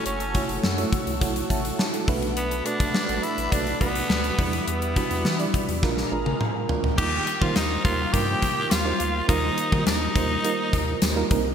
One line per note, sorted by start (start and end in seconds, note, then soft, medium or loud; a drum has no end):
0.00 0.23 A3 medium
0.00 0.23 E4 medium
0.00 0.23 F#4 medium
0.00 4.35 A4 medium
0.00 0.24 C#5 medium
0.00 4.34 F#5 medium
0.00 2.06 C#6 medium
0.00 2.06 E6 medium
0.06 0.38 F#1 loud
0.06 0.60 C#4 medium
0.06 closed hi-hat medium
0.20 closed hi-hat medium
0.34 0.67 A3 medium
0.34 0.67 E4 medium
0.34 0.67 F#4 medium
0.34 0.67 C#5 medium
0.34 kick medium
0.34 closed hi-hat medium
0.49 0.60 F#1 medium
0.49 closed hi-hat soft
0.64 0.85 F#2 loud
0.64 snare loud
0.77 1.10 A3 medium
0.77 1.10 E4 medium
0.77 1.10 F#4 medium
0.77 1.11 C#5 medium
0.77 closed hi-hat soft
0.93 kick medium
0.93 closed hi-hat medium
1.07 1.23 C#2 medium
1.07 closed hi-hat medium
1.21 1.43 B1 medium
1.21 1.43 A3 medium
1.21 1.43 E4 medium
1.21 1.43 F#4 medium
1.21 1.43 C#5 medium
1.21 kick medium
1.21 closed hi-hat medium
1.36 closed hi-hat soft
1.50 1.72 A1 medium
1.50 1.64 E5 medium
1.50 1.77 A5 medium
1.50 kick medium
1.50 closed hi-hat medium
1.65 1.79 A4 medium
1.65 1.78 F#5 medium
1.65 closed hi-hat medium
1.79 1.93 C#5 medium
1.79 1.93 F#5 medium
1.79 1.93 A5 medium
1.79 snare loud
1.94 2.21 A4 soft
1.94 2.21 F#5 medium
1.94 closed hi-hat soft
2.08 2.62 B1 loud
2.08 2.91 B2 medium
2.08 2.54 A3 medium
2.08 2.54 D4 medium
2.08 2.54 F#4 medium
2.08 2.54 B4 loud
2.08 2.35 E5 medium
2.08 5.79 B5 medium
2.08 6.94 D6 medium
2.08 kick loud
2.08 open hi-hat medium
2.22 closed hi-hat medium
2.37 2.67 B3 medium
2.37 closed hi-hat medium
2.51 closed hi-hat medium
2.65 2.98 A3 medium
2.65 2.98 D4 medium
2.65 3.25 D4 loud
2.65 2.98 F#4 medium
2.65 2.98 B4 medium
2.65 closed hi-hat medium
2.80 2.91 B1 medium
2.80 kick medium
2.80 closed hi-hat medium
2.94 snare loud
3.08 3.20 A1 medium
3.08 3.41 A3 medium
3.08 3.41 D4 medium
3.08 3.41 F#4 medium
3.08 3.42 B4 medium
3.08 closed hi-hat soft
3.23 3.54 E4 loud
3.23 closed hi-hat medium
3.38 3.49 A1 medium
3.38 closed hi-hat medium
3.52 3.74 B1 medium
3.52 3.73 A3 medium
3.52 3.74 D4 medium
3.52 3.80 D4 loud
3.52 3.74 F#4 medium
3.52 3.74 D5 medium
3.52 kick medium
3.52 closed hi-hat medium
3.67 closed hi-hat soft
3.80 4.03 B1 medium
3.80 4.24 A3 medium
3.80 4.63 B3 loud
3.80 4.24 D4 medium
3.80 4.24 F#4 medium
3.80 4.25 B4 medium
3.80 kick medium
3.80 closed hi-hat medium
3.95 closed hi-hat medium
4.10 4.31 D2 loud
4.10 snare loud
4.24 closed hi-hat soft
4.38 4.60 E2 medium
4.38 5.21 E3 medium
4.38 4.85 G3 medium
4.38 5.81 G3 medium
4.38 4.85 D4 medium
4.38 4.85 E4 medium
4.38 4.85 B4 medium
4.38 5.81 E5 medium
4.38 kick loud
4.38 open hi-hat medium
4.53 closed hi-hat medium
4.68 5.00 E2 loud
4.68 5.79 B3 medium
4.68 closed hi-hat medium
4.82 closed hi-hat medium
4.96 5.29 G3 medium
4.96 5.29 D4 medium
4.96 5.29 E4 medium
4.96 5.29 F#4 medium
4.96 kick medium
4.96 closed hi-hat medium
5.11 5.27 E2 medium
5.11 closed hi-hat medium
5.25 5.47 E3 loud
5.25 snare loud
5.39 5.72 G3 medium
5.39 5.72 D4 medium
5.39 5.72 E4 medium
5.39 5.72 D5 medium
5.39 closed hi-hat soft
5.54 kick loud
5.54 closed hi-hat medium
5.69 5.84 E2 medium
5.69 closed hi-hat medium
5.82 6.05 A#1 loud
5.82 6.65 A#2 medium
5.82 6.04 G#3 medium
5.82 6.05 D4 medium
5.82 6.05 F4 medium
5.82 6.97 G#4 medium
5.82 6.05 A#4 medium
5.82 6.97 F5 medium
5.82 6.97 A#5 medium
5.82 kick loud
5.82 snare medium
5.97 snare medium
6.11 6.33 G#1 medium
6.11 6.55 G#3 medium
6.11 6.55 D4 medium
6.11 6.55 F4 medium
6.11 6.55 A#4 medium
6.26 high tom medium
6.41 mid tom medium
6.69 6.91 D2 medium
6.69 6.91 G#3 medium
6.69 6.91 D4 medium
6.69 6.91 F4 medium
6.69 6.91 A#4 medium
6.69 floor tom medium
6.84 floor tom medium
6.98 7.20 D#2 loud
6.98 7.81 D#3 medium
6.98 7.30 G3 medium
6.98 7.30 A#3 medium
6.98 7.31 D#4 medium
6.98 7.31 F4 medium
6.98 7.43 G4 loud
6.98 7.31 A#4 medium
6.98 7.38 G5 loud
6.98 kick loud
6.98 crash loud
7.27 closed hi-hat medium
7.41 7.52 D#3 loud
7.41 7.74 G3 medium
7.41 7.74 A#3 medium
7.41 7.74 D#4 medium
7.41 7.74 F4 medium
7.41 7.58 F4 loud
7.41 7.74 C5 medium
7.41 7.56 F5 medium
7.41 kick loud
7.56 7.78 D#2 loud
7.56 7.84 D#4 medium
7.56 7.85 D#5 medium
7.56 snare loud
7.56 closed hi-hat medium
7.56 tambourine medium
7.84 8.06 D#2 medium
7.84 8.06 G3 medium
7.84 8.06 A#3 medium
7.84 8.06 D#4 medium
7.84 8.15 F4 loud
7.84 8.06 F4 medium
7.84 8.07 A#4 medium
7.84 8.11 F5 medium
7.84 kick loud
7.84 closed hi-hat medium
8.13 8.35 G2 loud
8.13 8.67 G3 medium
8.13 8.67 A#3 medium
8.13 8.68 D#4 medium
8.13 8.68 F4 medium
8.13 8.73 G4 loud
8.13 8.68 A#4 medium
8.13 8.71 G5 loud
8.13 kick loud
8.13 closed hi-hat medium
8.42 kick medium
8.42 closed hi-hat medium
8.71 8.93 D#2 loud
8.71 9.28 F4 loud
8.71 9.29 F5 medium
8.71 snare loud
8.71 closed hi-hat loud
8.71 tambourine medium
8.85 9.18 G3 medium
8.85 9.18 A#3 medium
8.85 9.18 D#4 medium
8.85 9.18 F4 medium
8.85 9.18 C5 medium
9.00 9.22 D2 medium
9.00 closed hi-hat medium
9.28 9.51 D#2 loud
9.28 10.11 D#3 medium
9.28 9.61 G3 medium
9.28 9.61 A#3 medium
9.28 9.61 D#4 medium
9.28 9.83 D#4 loud
9.28 9.61 F4 medium
9.28 9.62 A#4 medium
9.28 9.82 D#5 medium
9.28 kick loud
9.28 closed hi-hat medium
9.58 closed hi-hat medium
9.71 9.83 D#3 loud
9.71 10.04 G3 medium
9.71 10.04 A#3 medium
9.71 10.05 D#4 medium
9.71 10.05 F4 medium
9.71 10.05 A#4 medium
9.71 kick loud
9.86 10.08 D#2 medium
9.86 11.27 D#4 medium
9.86 11.27 D#5 medium
9.86 snare loud
9.86 closed hi-hat medium
9.86 tambourine medium
10.15 10.37 D#2 medium
10.15 10.37 G3 medium
10.15 10.37 A#3 medium
10.15 10.37 D#4 medium
10.15 10.37 F4 medium
10.15 10.38 C5 medium
10.15 kick loud
10.15 closed hi-hat medium
10.44 10.98 G3 medium
10.44 10.98 A#3 medium
10.44 10.98 D#4 medium
10.44 10.99 F4 medium
10.44 10.99 A#4 medium
10.44 closed hi-hat medium
10.73 10.95 D#2 loud
10.73 kick medium
10.73 closed hi-hat medium
11.02 11.24 D#2 loud
11.02 snare loud
11.02 closed hi-hat loud
11.02 tambourine medium
11.16 11.29 G3 medium
11.16 11.29 A#3 medium
11.16 11.30 D#4 medium
11.16 11.31 F4 medium
11.16 11.31 A#4 loud
11.31 11.55 C2 loud
11.31 11.55 C3 medium
11.31 11.55 G3 medium
11.31 11.55 A#3 medium
11.31 11.55 C4 medium
11.31 11.55 D#4 medium
11.31 11.55 A#4 loud
11.31 kick loud
11.31 closed hi-hat medium